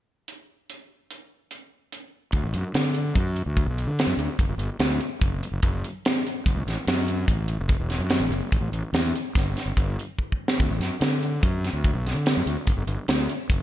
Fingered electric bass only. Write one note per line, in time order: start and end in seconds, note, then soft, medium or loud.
2.33 2.42 D2 medium
2.44 2.53 A1 medium
2.54 2.63 F#2 medium
2.75 3.11 D3 medium
3.15 3.43 F#2 medium
3.46 3.64 D2 medium
3.66 3.85 B1 medium
3.87 4.05 D3 medium
4.07 4.16 F#2 medium
4.17 4.27 D2 medium
4.39 4.48 G1 medium
4.49 4.57 G1 medium
4.58 4.68 G1 medium
4.79 4.98 D2 medium
5.21 5.40 F#1 medium
5.52 5.61 F#1 medium
5.63 5.81 F#1 medium
6.46 6.55 F#1 medium
6.56 6.65 C#2 medium
6.67 6.76 A1 medium
6.87 7.24 F#2 medium
7.28 7.56 A1 medium
7.60 7.78 F#1 medium
7.80 7.98 E1 medium
7.99 8.18 F#2 medium
8.20 8.29 A1 medium
8.30 8.40 F#1 medium
8.53 8.60 A1 medium
8.61 8.71 A1 medium
8.72 8.82 A1 medium
8.93 9.11 E2 medium
9.36 9.54 G1 medium
9.66 9.75 G1 medium
9.76 9.95 G1 medium
10.60 10.69 D2 medium
10.70 10.79 A1 medium
10.79 10.89 F#2 medium
11.01 11.37 D3 medium
11.43 11.70 F#2 medium
11.73 11.92 D2 medium
11.94 12.12 B1 medium
12.14 12.33 D3 medium
12.37 12.45 F#2 medium
12.46 12.55 D2 medium
12.68 12.76 G1 medium
12.77 12.86 G1 medium
12.87 12.96 G1 medium
13.08 13.26 D2 medium
13.50 13.63 F#1 medium